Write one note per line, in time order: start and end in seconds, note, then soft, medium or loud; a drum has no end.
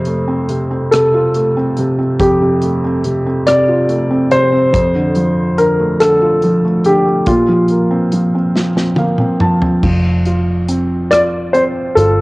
0.00 2.16 F2 medium
0.00 0.47 C3 soft
0.00 0.97 C5 medium
0.05 1.34 A3 soft
0.05 closed hi-hat soft
0.28 0.69 C4 soft
0.49 0.91 C3 soft
0.49 closed hi-hat soft
0.71 1.55 C4 soft
0.91 1.77 C3 soft
0.91 2.15 A4 medium
0.91 cross-stick medium
0.91 closed hi-hat medium
1.14 2.79 F4 soft
1.34 2.62 A3 soft
1.34 closed hi-hat soft
1.57 1.97 C4 soft
1.77 2.40 C3 soft
1.77 closed hi-hat soft
1.99 2.83 C4 soft
2.19 4.70 F2 medium
2.19 3.51 G4 medium
2.19 kick medium
2.19 closed hi-hat medium
2.41 3.04 C3 soft
2.61 3.88 A3 soft
2.61 closed hi-hat soft
2.84 3.25 C4 soft
3.04 3.45 C3 soft
3.04 closed hi-hat soft
3.27 4.09 C4 soft
3.47 4.30 C3 soft
3.47 4.34 D5 medium
3.47 cross-stick medium
3.47 closed hi-hat medium
3.68 4.71 F4 soft
3.89 4.71 A3 soft
3.89 closed hi-hat soft
4.11 4.51 C4 soft
4.31 4.73 C3 soft
4.31 5.62 C5 medium
4.31 closed hi-hat soft
4.53 4.73 C4 soft
4.73 7.23 F2 medium
4.73 kick medium
4.73 closed hi-hat medium
4.95 5.57 D3 soft
5.15 6.42 F3 soft
5.15 closed hi-hat soft
5.58 5.99 D3 soft
5.58 6.02 A#4 medium
5.58 closed hi-hat soft
5.80 6.63 A3 soft
6.00 6.83 D3 soft
6.00 6.88 A4 medium
6.00 cross-stick medium
6.00 closed hi-hat medium
6.22 7.25 F4 soft
6.42 7.26 F3 soft
6.42 closed hi-hat soft
6.65 7.04 A3 soft
6.85 7.26 D3 soft
6.85 7.29 G4 medium
6.85 closed hi-hat soft
7.05 7.26 A3 soft
7.26 9.79 A#2 medium
7.26 9.37 F4 medium
7.26 kick medium
7.26 closed hi-hat medium
7.48 8.11 F3 soft
7.68 8.96 A#3 soft
7.68 closed hi-hat soft
7.91 8.33 C4 soft
8.12 8.54 F3 soft
8.12 closed hi-hat soft
8.35 8.75 C4 soft
8.55 9.40 F3 soft
8.55 snare soft
8.76 9.18 C4 soft
8.76 snare soft
8.96 9.81 A#3 soft
8.96 9.38 F5 soft
8.96 high tom medium
9.18 9.61 C4 soft
9.18 mid tom soft
9.40 9.82 F3 soft
9.40 9.81 A5 medium
9.40 mid tom medium
9.62 9.83 C4 soft
9.62 floor tom medium
9.83 11.93 F1 medium
9.83 12.21 F3 soft
9.83 kick medium
9.83 crash medium
10.26 11.11 F4 soft
10.26 closed hi-hat soft
10.69 11.53 C4 soft
10.69 closed hi-hat medium
11.11 11.95 F4 soft
11.11 11.21 D5 medium
11.11 cross-stick medium
11.11 closed hi-hat medium
11.53 12.21 C4 soft
11.53 11.63 C5 medium
11.53 closed hi-hat soft
11.95 12.21 G1 medium
11.95 12.21 F4 soft
11.95 12.21 A4 medium
11.95 closed hi-hat medium